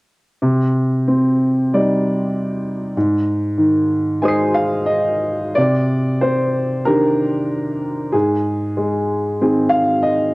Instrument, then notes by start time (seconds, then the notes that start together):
grand piano
0.42 C3
1.08 C4
1.74 G3 D#4 D5
2.97 G#2
3.58 D#3
4.22 G#3 D#4 C5 G#5 D#6
4.28 C7
4.54 F5
4.86 D#5
5.55 C3 D5
6.21 C4 C5
6.85 D#3 D4 G4 A#4
8.12 G#2 G#4
8.77 G#3
9.41 D#3 C4 G#4
9.69 F5
10.03 D#5